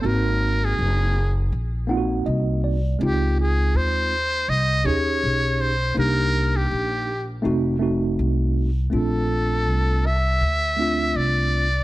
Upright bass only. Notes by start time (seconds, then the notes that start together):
0.05 G#1
0.79 F#1
1.52 A#1
2.26 C2
3.01 C#2
3.74 D#2
4.48 C2
4.85 D#2
5.23 B1
5.97 C2
6.71 A#1
7.45 F1
8.19 C2
8.93 A#1
9.67 C2
10.41 D2
11.15 C2